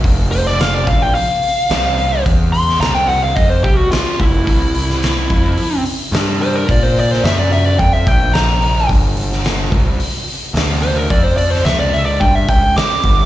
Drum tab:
HH |o-o-o-o-o-o-o-o-|o-o-o-o-o-o-o-o-|o-o-o-o-o-o-o-o-|o-o-o-o-o-o-o-o-|
SD |---oo-------o---|---oo-------o---|---oo-------o---|---oo-------o---|
BD |o-----o---------|o-------o-o---o-|o-----o---------|o-------o-o-----|

HH |o-o-o-o-o-o-o-o-|o-o-o-o-o-o-o-o-|
SD |---oo-------o---|---oo-------o---|
BD |o-----o---------|o-------o-o---o-|